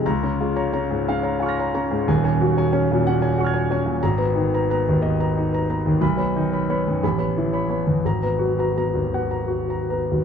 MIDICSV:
0, 0, Header, 1, 2, 480
1, 0, Start_track
1, 0, Tempo, 681044
1, 29, Time_signature, 6, 3, 24, 8
1, 1468, Tempo, 647249
1, 2908, Tempo, 669643
1, 5788, Tempo, 720288
1, 6748, Tempo, 811908
1, 7198, End_track
2, 0, Start_track
2, 0, Title_t, "Grand piano"
2, 0, Program_c, 0, 0
2, 0, Control_c, 0, 64, 127
2, 40, Note_on_c, 0, 37, 71
2, 41, Note_on_c, 0, 82, 69
2, 42, Control_c, 0, 64, 0
2, 152, Note_off_c, 0, 82, 0
2, 161, Control_c, 0, 64, 127
2, 163, Note_on_c, 0, 61, 52
2, 163, Note_on_c, 0, 82, 57
2, 167, Note_on_c, 0, 73, 51
2, 267, Note_off_c, 0, 82, 0
2, 269, Note_off_c, 0, 73, 0
2, 279, Note_on_c, 0, 56, 57
2, 286, Note_on_c, 0, 65, 59
2, 351, Note_off_c, 0, 61, 0
2, 397, Note_on_c, 0, 82, 65
2, 399, Note_on_c, 0, 73, 58
2, 467, Note_off_c, 0, 56, 0
2, 471, Note_off_c, 0, 65, 0
2, 500, Note_off_c, 0, 73, 0
2, 501, Note_off_c, 0, 82, 0
2, 510, Note_on_c, 0, 73, 62
2, 516, Note_on_c, 0, 61, 58
2, 517, Note_on_c, 0, 82, 62
2, 616, Note_off_c, 0, 73, 0
2, 620, Note_off_c, 0, 82, 0
2, 633, Note_on_c, 0, 44, 62
2, 637, Note_on_c, 0, 56, 55
2, 701, Note_off_c, 0, 61, 0
2, 764, Note_on_c, 0, 77, 66
2, 767, Note_on_c, 0, 61, 58
2, 819, Note_off_c, 0, 44, 0
2, 821, Note_off_c, 0, 56, 0
2, 866, Note_on_c, 0, 73, 60
2, 873, Note_on_c, 0, 82, 61
2, 945, Note_off_c, 0, 77, 0
2, 946, Note_off_c, 0, 61, 0
2, 973, Note_off_c, 0, 73, 0
2, 977, Note_off_c, 0, 82, 0
2, 982, Note_on_c, 0, 80, 50
2, 987, Note_on_c, 0, 65, 63
2, 1004, Note_on_c, 0, 85, 47
2, 1029, Note_on_c, 0, 89, 52
2, 1047, Note_on_c, 0, 94, 50
2, 1121, Note_on_c, 0, 73, 59
2, 1125, Note_on_c, 0, 82, 66
2, 1179, Note_off_c, 0, 65, 0
2, 1221, Note_off_c, 0, 73, 0
2, 1221, Note_off_c, 0, 82, 0
2, 1229, Note_on_c, 0, 61, 60
2, 1231, Note_on_c, 0, 73, 57
2, 1231, Note_on_c, 0, 82, 66
2, 1338, Note_off_c, 0, 73, 0
2, 1338, Note_off_c, 0, 82, 0
2, 1341, Note_on_c, 0, 44, 66
2, 1350, Note_on_c, 0, 56, 58
2, 1421, Note_off_c, 0, 61, 0
2, 1439, Note_off_c, 0, 80, 0
2, 1445, Note_off_c, 0, 37, 0
2, 1450, Note_off_c, 0, 85, 0
2, 1462, Note_off_c, 0, 89, 0
2, 1463, Note_on_c, 0, 39, 74
2, 1464, Note_off_c, 0, 44, 0
2, 1464, Note_on_c, 0, 27, 76
2, 1468, Note_on_c, 0, 80, 70
2, 1469, Note_off_c, 0, 56, 0
2, 1472, Note_off_c, 0, 94, 0
2, 1478, Control_c, 0, 64, 0
2, 1578, Note_off_c, 0, 80, 0
2, 1581, Note_on_c, 0, 73, 53
2, 1582, Control_c, 0, 64, 127
2, 1585, Note_on_c, 0, 61, 58
2, 1589, Note_on_c, 0, 80, 59
2, 1697, Note_off_c, 0, 73, 0
2, 1701, Note_off_c, 0, 80, 0
2, 1708, Note_on_c, 0, 66, 63
2, 1713, Note_on_c, 0, 54, 60
2, 1784, Note_off_c, 0, 61, 0
2, 1828, Note_on_c, 0, 73, 59
2, 1836, Note_on_c, 0, 80, 65
2, 1903, Note_off_c, 0, 66, 0
2, 1906, Note_off_c, 0, 54, 0
2, 1933, Note_off_c, 0, 73, 0
2, 1935, Note_off_c, 0, 80, 0
2, 1944, Note_on_c, 0, 73, 60
2, 1946, Note_on_c, 0, 80, 65
2, 1947, Note_on_c, 0, 61, 63
2, 2054, Note_off_c, 0, 73, 0
2, 2056, Note_off_c, 0, 80, 0
2, 2081, Note_on_c, 0, 54, 59
2, 2083, Note_on_c, 0, 46, 65
2, 2139, Note_off_c, 0, 61, 0
2, 2198, Note_on_c, 0, 78, 70
2, 2203, Note_on_c, 0, 61, 65
2, 2264, Note_off_c, 0, 54, 0
2, 2266, Note_off_c, 0, 46, 0
2, 2311, Note_on_c, 0, 73, 55
2, 2312, Note_on_c, 0, 80, 62
2, 2382, Note_off_c, 0, 78, 0
2, 2384, Note_off_c, 0, 61, 0
2, 2416, Note_off_c, 0, 73, 0
2, 2416, Note_off_c, 0, 80, 0
2, 2428, Note_on_c, 0, 66, 65
2, 2430, Note_on_c, 0, 78, 48
2, 2448, Note_on_c, 0, 85, 51
2, 2478, Note_on_c, 0, 89, 52
2, 2493, Note_on_c, 0, 92, 51
2, 2545, Note_on_c, 0, 80, 61
2, 2550, Note_on_c, 0, 73, 58
2, 2617, Note_off_c, 0, 66, 0
2, 2653, Note_off_c, 0, 80, 0
2, 2655, Note_off_c, 0, 73, 0
2, 2670, Note_on_c, 0, 61, 61
2, 2674, Note_on_c, 0, 73, 55
2, 2679, Note_on_c, 0, 80, 62
2, 2779, Note_off_c, 0, 73, 0
2, 2782, Note_off_c, 0, 80, 0
2, 2782, Note_on_c, 0, 54, 60
2, 2784, Note_on_c, 0, 46, 64
2, 2861, Note_off_c, 0, 61, 0
2, 2875, Note_off_c, 0, 39, 0
2, 2876, Note_off_c, 0, 27, 0
2, 2880, Note_off_c, 0, 78, 0
2, 2889, Note_off_c, 0, 85, 0
2, 2905, Note_off_c, 0, 89, 0
2, 2906, Note_off_c, 0, 54, 0
2, 2907, Note_off_c, 0, 46, 0
2, 2910, Note_on_c, 0, 82, 69
2, 2912, Note_off_c, 0, 92, 0
2, 2913, Note_on_c, 0, 32, 76
2, 2919, Control_c, 0, 64, 0
2, 3008, Note_off_c, 0, 82, 0
2, 3017, Note_on_c, 0, 71, 56
2, 3019, Note_on_c, 0, 82, 62
2, 3023, Control_c, 0, 64, 127
2, 3024, Note_on_c, 0, 59, 56
2, 3128, Note_off_c, 0, 71, 0
2, 3129, Note_off_c, 0, 82, 0
2, 3141, Note_on_c, 0, 63, 57
2, 3143, Note_on_c, 0, 51, 59
2, 3214, Note_off_c, 0, 59, 0
2, 3277, Note_on_c, 0, 71, 56
2, 3280, Note_on_c, 0, 82, 65
2, 3333, Note_off_c, 0, 63, 0
2, 3334, Note_off_c, 0, 51, 0
2, 3378, Note_off_c, 0, 71, 0
2, 3380, Note_off_c, 0, 82, 0
2, 3391, Note_on_c, 0, 71, 63
2, 3396, Note_on_c, 0, 59, 63
2, 3400, Note_on_c, 0, 82, 66
2, 3495, Note_off_c, 0, 71, 0
2, 3500, Note_off_c, 0, 82, 0
2, 3522, Note_on_c, 0, 51, 59
2, 3528, Note_on_c, 0, 39, 64
2, 3582, Note_off_c, 0, 59, 0
2, 3620, Note_on_c, 0, 59, 61
2, 3623, Note_on_c, 0, 75, 65
2, 3705, Note_off_c, 0, 51, 0
2, 3708, Note_off_c, 0, 39, 0
2, 3751, Note_on_c, 0, 71, 55
2, 3753, Note_on_c, 0, 82, 59
2, 3813, Note_off_c, 0, 59, 0
2, 3815, Note_off_c, 0, 75, 0
2, 3855, Note_off_c, 0, 71, 0
2, 3856, Note_off_c, 0, 82, 0
2, 3875, Note_on_c, 0, 63, 61
2, 3983, Note_on_c, 0, 71, 53
2, 3996, Note_on_c, 0, 82, 62
2, 4058, Note_off_c, 0, 63, 0
2, 4089, Note_off_c, 0, 71, 0
2, 4096, Note_off_c, 0, 82, 0
2, 4106, Note_on_c, 0, 71, 58
2, 4109, Note_on_c, 0, 59, 57
2, 4112, Note_on_c, 0, 82, 58
2, 4209, Note_off_c, 0, 71, 0
2, 4213, Note_off_c, 0, 82, 0
2, 4222, Note_on_c, 0, 51, 60
2, 4229, Note_on_c, 0, 39, 60
2, 4293, Note_off_c, 0, 59, 0
2, 4310, Note_off_c, 0, 32, 0
2, 4333, Note_on_c, 0, 35, 75
2, 4334, Note_on_c, 0, 83, 68
2, 4338, Note_off_c, 0, 51, 0
2, 4342, Note_off_c, 0, 39, 0
2, 4346, Control_c, 0, 64, 0
2, 4442, Control_c, 0, 64, 127
2, 4444, Note_off_c, 0, 83, 0
2, 4445, Note_on_c, 0, 59, 56
2, 4448, Note_on_c, 0, 73, 50
2, 4455, Note_on_c, 0, 83, 58
2, 4559, Note_off_c, 0, 73, 0
2, 4563, Note_off_c, 0, 83, 0
2, 4584, Note_on_c, 0, 63, 57
2, 4585, Note_on_c, 0, 51, 56
2, 4643, Note_off_c, 0, 59, 0
2, 4699, Note_on_c, 0, 73, 54
2, 4704, Note_on_c, 0, 83, 58
2, 4772, Note_off_c, 0, 51, 0
2, 4772, Note_off_c, 0, 63, 0
2, 4806, Note_off_c, 0, 73, 0
2, 4808, Note_off_c, 0, 83, 0
2, 4823, Note_on_c, 0, 73, 57
2, 4825, Note_on_c, 0, 59, 61
2, 4826, Note_on_c, 0, 83, 60
2, 4928, Note_off_c, 0, 73, 0
2, 4929, Note_off_c, 0, 83, 0
2, 4947, Note_on_c, 0, 51, 55
2, 4952, Note_on_c, 0, 42, 59
2, 5012, Note_off_c, 0, 59, 0
2, 5033, Note_off_c, 0, 35, 0
2, 5062, Note_off_c, 0, 51, 0
2, 5063, Note_on_c, 0, 83, 57
2, 5064, Note_off_c, 0, 42, 0
2, 5066, Note_on_c, 0, 33, 69
2, 5068, Control_c, 0, 64, 0
2, 5158, Control_c, 0, 64, 127
2, 5162, Note_off_c, 0, 83, 0
2, 5170, Note_on_c, 0, 73, 52
2, 5173, Note_on_c, 0, 59, 50
2, 5173, Note_on_c, 0, 83, 56
2, 5283, Note_off_c, 0, 73, 0
2, 5284, Note_off_c, 0, 83, 0
2, 5308, Note_on_c, 0, 64, 57
2, 5316, Note_on_c, 0, 52, 56
2, 5370, Note_off_c, 0, 59, 0
2, 5421, Note_on_c, 0, 73, 54
2, 5424, Note_on_c, 0, 83, 58
2, 5499, Note_off_c, 0, 64, 0
2, 5503, Note_off_c, 0, 52, 0
2, 5527, Note_off_c, 0, 73, 0
2, 5532, Note_off_c, 0, 83, 0
2, 5538, Note_on_c, 0, 59, 54
2, 5538, Note_on_c, 0, 73, 51
2, 5547, Note_on_c, 0, 83, 56
2, 5650, Note_off_c, 0, 73, 0
2, 5655, Note_off_c, 0, 83, 0
2, 5666, Note_on_c, 0, 52, 53
2, 5667, Note_on_c, 0, 40, 55
2, 5737, Note_off_c, 0, 59, 0
2, 5771, Note_off_c, 0, 33, 0
2, 5788, Note_off_c, 0, 52, 0
2, 5789, Note_off_c, 0, 40, 0
2, 5793, Note_on_c, 0, 32, 68
2, 5799, Control_c, 0, 64, 0
2, 5799, Note_on_c, 0, 82, 61
2, 5890, Control_c, 0, 64, 127
2, 5903, Note_off_c, 0, 82, 0
2, 5910, Note_on_c, 0, 59, 47
2, 5913, Note_on_c, 0, 82, 54
2, 5917, Note_on_c, 0, 71, 47
2, 6013, Note_off_c, 0, 82, 0
2, 6015, Note_off_c, 0, 71, 0
2, 6018, Note_on_c, 0, 66, 52
2, 6020, Note_on_c, 0, 54, 48
2, 6093, Note_off_c, 0, 59, 0
2, 6150, Note_on_c, 0, 71, 54
2, 6158, Note_on_c, 0, 82, 56
2, 6206, Note_off_c, 0, 66, 0
2, 6207, Note_off_c, 0, 54, 0
2, 6250, Note_off_c, 0, 71, 0
2, 6254, Note_off_c, 0, 82, 0
2, 6269, Note_on_c, 0, 59, 50
2, 6275, Note_on_c, 0, 71, 48
2, 6276, Note_on_c, 0, 82, 57
2, 6374, Note_off_c, 0, 71, 0
2, 6374, Note_off_c, 0, 82, 0
2, 6384, Note_on_c, 0, 54, 50
2, 6392, Note_on_c, 0, 39, 57
2, 6455, Note_off_c, 0, 59, 0
2, 6520, Note_on_c, 0, 78, 59
2, 6525, Note_on_c, 0, 59, 51
2, 6575, Note_off_c, 0, 54, 0
2, 6579, Note_off_c, 0, 39, 0
2, 6626, Note_on_c, 0, 71, 44
2, 6632, Note_on_c, 0, 82, 52
2, 6709, Note_off_c, 0, 78, 0
2, 6711, Note_off_c, 0, 59, 0
2, 6738, Note_off_c, 0, 71, 0
2, 6742, Note_off_c, 0, 82, 0
2, 6745, Note_on_c, 0, 66, 51
2, 6868, Note_on_c, 0, 71, 44
2, 6876, Note_on_c, 0, 82, 47
2, 6934, Note_off_c, 0, 66, 0
2, 6973, Note_off_c, 0, 71, 0
2, 6978, Note_off_c, 0, 82, 0
2, 6994, Note_on_c, 0, 59, 47
2, 6995, Note_on_c, 0, 82, 46
2, 6996, Note_on_c, 0, 71, 47
2, 7100, Note_off_c, 0, 71, 0
2, 7100, Note_off_c, 0, 82, 0
2, 7121, Note_on_c, 0, 39, 50
2, 7121, Note_on_c, 0, 54, 47
2, 7185, Note_off_c, 0, 59, 0
2, 7198, Note_off_c, 0, 32, 0
2, 7198, Note_off_c, 0, 39, 0
2, 7198, Note_off_c, 0, 54, 0
2, 7198, End_track
0, 0, End_of_file